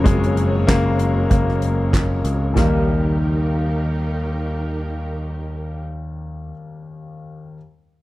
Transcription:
Already playing: F2 F#2 G#2 A#2 C#3 D#3 F3 F#3 A#3 F#4 A#4 C#5
0.04 F#1 C#3 F#3 G#3 A#3, kick, closed hi-hat
0.24 closed hi-hat
0.37 closed hi-hat
0.67 F#1 C#3 A#3, kick, snare, clap, closed hi-hat
0.99 closed hi-hat
1.30 F#1 C#3 A#3, kick, closed hi-hat
1.48 snare
1.62 closed hi-hat
1.93 kick, snare, clap, closed hi-hat
2.24 C#2, closed hi-hat
2.54 D#2 D#3 G3 A#3 D#4 G4 A#4, snare, floor tom, crash
2.58 A#4

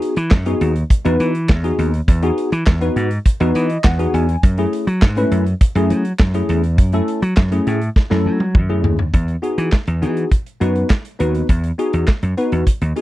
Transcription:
Already playing: B3 D#4 F#4 G#4
0.02 closed hi-hat
0.16 E3, closed hi-hat
0.31 F#2, kick, snare, clap
0.46 B3 D#4 F#4 G#4, closed hi-hat
0.61 D#2, closed hi-hat
0.76 closed hi-hat
0.90 kick, closed hi-hat
1.04 E2 B3 D#4 F#4 B4, closed hi-hat
1.20 E3, closed hi-hat
1.35 closed hi-hat
1.49 E2, kick, snare, clap
1.63 B3 D#4 F#4 G#4, closed hi-hat
1.79 D#2, closed hi-hat
1.94 closed hi-hat
2.08 E2, kick, closed hi-hat
2.23 B3 D#4 F#4 G#4, closed hi-hat
2.38 closed hi-hat
2.52 E3, closed hi-hat
2.66 E2, kick, snare, clap
2.81 B3 D#4 F#4 B4, closed hi-hat
2.96 G#2, closed hi-hat
3.11 closed hi-hat
3.26 kick, closed hi-hat
3.40 E2 B3 D#4 F#4 B4, closed hi-hat
3.55 E3 D#5, closed hi-hat
3.70 closed hi-hat
3.84 E2 F#5, kick, snare, clap
3.99 B3 D#4 F#4 G#4, closed hi-hat
4.14 E2 G#5, closed hi-hat
4.29 closed hi-hat
4.43 F#2, kick, closed hi-hat
4.58 A3 C#4 E4 G#4, closed hi-hat
4.73 closed hi-hat
4.87 F#3, closed hi-hat
5.02 G#2, kick, snare, clap
5.17 A3 C#4 E4 B4, closed hi-hat
5.31 F#2, closed hi-hat
5.46 closed hi-hat
5.61 kick, closed hi-hat
5.75 F#2 A3 C#4 E4 G#4, closed hi-hat
5.90 F#3, closed hi-hat
6.05 closed hi-hat
6.19 F#2, kick, snare, clap
6.34 A3 C#4 E4 G#4, closed hi-hat
6.49 E2, closed hi-hat
6.64 closed hi-hat
6.78 F#2, kick, closed hi-hat
6.92 A3 C#4 E4 A4, closed hi-hat
7.08 closed hi-hat
7.22 F#3, closed hi-hat
7.37 F#2, kick, snare, clap
7.52 A3 C#4 E4 G#4, closed hi-hat
7.67 A2, closed hi-hat
7.82 closed hi-hat
7.96 kick, snare
8.10 F#2 A3 C#4 E4 A4, snare
8.26 F#3
8.40 high tom
8.55 F#2, kick, mid tom
8.69 A3 C#4 E4 G#4
8.84 D#2, floor tom
8.99 floor tom
9.14 E2, kick, closed hi-hat
9.28 closed hi-hat
9.42 B3 D#4 F#4 G#4, closed hi-hat
9.58 E3, closed hi-hat
9.72 kick, snare, clap
9.87 E2, closed hi-hat
10.02 E3 B3 D#4 F#4 G#4, closed hi-hat
10.17 closed hi-hat
10.31 kick, closed hi-hat
10.46 closed hi-hat
10.61 F#2 B3 D#4 F#4 B4, closed hi-hat
10.76 closed hi-hat
10.90 kick, snare, clap
11.05 closed hi-hat
11.19 D#2 B3 D#4 F#4 B4, closed hi-hat
11.35 closed hi-hat
11.49 E2, kick, closed hi-hat
11.64 closed hi-hat
11.78 B3 D#4 F#4 G#4, closed hi-hat
11.93 E2, closed hi-hat
12.08 kick, snare, clap
12.23 F#2, closed hi-hat
12.37 B3 D#4 F#4 B4, closed hi-hat
12.52 E2, closed hi-hat
12.67 kick, closed hi-hat
12.81 D#2, closed hi-hat
12.96 B3 D#4 F#4 G#4, closed hi-hat

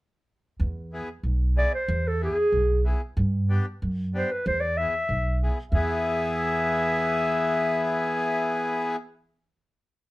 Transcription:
0.60 E2
0.93 B3 E4 G#4
1.23 B1
1.56 B3 E4 G#4 D5
1.74 C5
1.88 E2
2.08 A4
2.21 B3 E4 G#4
2.52 B1
2.84 B3 E4 G#4
3.17 G2
3.49 B3 D4 G4
3.82 F#2
4.14 B3 D4 G4 C5
4.32 B4
4.46 E2 C5
4.60 D5
4.77 B3 E4 G#4 E5
5.09 B1
5.43 B3 E4 G#4
5.71 E2 B3 E4 G#4 E5

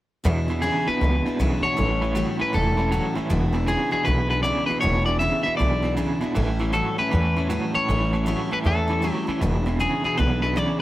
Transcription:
0.24 E2 B2 E3 G#3 D4 E4
0.48 E2 B2 E3 G#3 D4 E4
0.62 E2 B2 C#3 E3 G#3 D4 E4 G#4
0.87 E2 B2 E3 G#3 D4 E4 B4, muted upright bass stroke
1.01 C#2 E2 B2 E3 G#3 D4 E4
1.26 E2 B2 E3 G#3 D4 E4, muted upright bass stroke
1.39 B1 E2 B2 C#3 E3 G#3 D4 E4
1.63 E2 B2 E3 G#3 D4 E4 C#5, muted upright bass stroke
1.77 A1 A2 E3 G3 C#4 E4
2.01 A2 E3 G3 C#4 E4
2.14 A2 E3 F#3 G3 C#4 E4
2.39 A2 E3 G3 C#4 E4 B4, muted upright bass stroke
2.52 E1 A2 E3 G3 C#4 E4 A4
2.77 A2 E3 G3 C#4 E4
2.91 A2 E3 F#3 G3 C#4 E4
3.15 A2 E3 G3 C#4 E4, muted upright bass stroke
3.29 E1 E2 B2 E3 G#3 D4 E4
3.53 E2 B2 E3 G#3 D4 E4
3.66 E2 B2 C#3 E3 G#3 D4 E4 G#4
3.91 E2 B2 E3 G#3 D4 E4 G#4, muted upright bass stroke
4.04 B1 E2 B2 E3 G#3 D4 E4 B4
4.29 E2 B2 E3 G#3 D4 E4 B4
4.43 E2 B2 C#3 E3 G#3 D4 E4 D5
4.66 E2 B2 D4 E4 B4
4.70 E3 G#3, muted upright bass stroke
4.81 E1 E2 B2 E3 G#3 D4 E4 C#5
5.06 E2 B2 E3 G#3 D4 E4 D5
5.19 E2 B2 C#3 E3 G#3 D4 E4 E5
5.43 E2 B2 G#3 D4 E4 E5, muted upright bass stroke
5.47 E3
5.57 B1 E2 B2 E3 G#3 D4 D5
5.61 E4
5.82 E2 B2 E3 G#3 D4 E4
5.97 E2 B2 C#3 E3 G#3 D4 E4
6.21 E2 B2 E3 G#3 D4 E4, muted upright bass stroke
6.34 A1 A2 E3 G3 C#4 E4
6.59 A2 E3 G3 C#4 E4
6.73 A2 E3 F#3 G3 C#4 E4 A4
6.98 A2 E3 G3 C#4 E4 B4, muted upright bass stroke
7.10 E2 A2 E3 G3 C#4
7.15 E4
7.36 A2 E3 G3 C#4 E4
7.49 A2 E3 F#3 G3 C#4 E4
7.74 A2 E3 G3 C#4 E4 C#5, muted upright bass stroke
7.88 A1 A2 E3 G3 C#4 E4
8.13 A2 E3 G3 C#4 E4
8.26 A2 E3 F#3 G3 C#4 E4
8.51 A2 E3 G3 C#4 E4 B4, muted upright bass stroke
8.64 E2 A2 E3 G3 C#4 E4 A4
8.88 A2 E3 G3 C#4 E4
9.02 A2 E3 F#3 G3 C#4 E4
9.11 G4
9.27 A2 E3 G3 C#4 E4, muted upright bass stroke
9.41 E1 E2 B2 E3 G#3 D4 E4
9.66 E2 B2 E3 G#3 D4 E4
9.80 E2 B2 C#3 E3 G#3 D4 E4 G#4
10.04 E2 B2 E3 G#3 D4 E4 G#4, muted upright bass stroke
10.17 B1 E2 B2 E3 G#3 D4 E4 B4
10.42 E2 B2 E3 G#3 D4 E4 B4
10.56 E2 B2 C#3 E3 G#3 D4 E4 D5

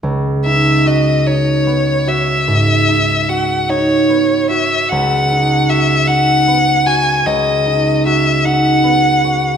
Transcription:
0.03 C#2
0.45 D#4 E5
0.86 F#4 D#5
1.27 D#4 C#5
1.67 B3
2.07 F#4 E5
2.48 G#2
2.89 D#4
3.29 F#4 F#5
3.69 D#4 C#5
4.10 B3
4.50 F#4 E5
4.89 C#2 F#5
5.31 D#4
5.69 F#4 E5
6.07 D#4 F#5
6.48 B3
6.86 F#4 G#5
7.26 C#2 D#5
7.66 D#4
8.06 F#4 E5
8.45 D#4 F#5
8.84 B3
9.25 F#4

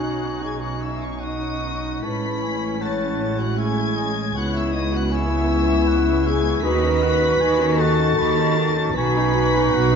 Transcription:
Already playing: B1 B2 C#4 D#4 F#4 F#5 G#5 C#6 F#6
0.41 G#4 G#5 G#6
0.60 F#4 F#5 F#6
0.81 E4 E5 E6
1.00 C#4 C#5 C#6
1.19 D#4 D#5 F#5 C#6 D#6
2.02 A1 A2 G#3 C#4 E4 B4 A5 B5 C#6 B6
2.43 G#5
2.79 E4 C#5 F#5 A5 C#6 A6
3.39 F#4 F#5 F#6
3.58 E4 G#4 E5 G#5 C#6 G#6
3.96 D#5
4.34 C#2 C#3 B3 E4 F#4 C#5 F#5 C#6 F#6
4.54 E4 E5 E6
4.73 D#4 D#5 D#6
4.92 F#4 F#5 F#6
5.10 E4 E5 G#5 C#6 E6
5.88 F#5
6.24 G#4 E5 G#5 G#6
6.62 D#2 D#3 D#4 F#4 B4 D#5 B5 C#6 B6
6.83 C#4 D#4
7.02 D#4 F#4 F#5
7.21 C#4 D#4
7.40 D#2 D#3 D#4 F#4 G#5
7.60 C#4 D#4
7.76 D#4 F#4 A4 A5 A6
7.81 F#5
7.98 C#4 D#4
8.17 D#2 D#3 D#4 F#4 B5
8.37 C#4 D#4
8.56 D#4 F#4 A5
8.75 C#4 D#4
8.94 B1 B2 B3 D#4 F#4 B4 G#5 B5 C#6 B6
9.15 C#4 D#4
9.34 B3 F#4
9.55 C#4 D#4
9.73 B1 B2 B3 F#4 F#5
9.92 C#4 D#4

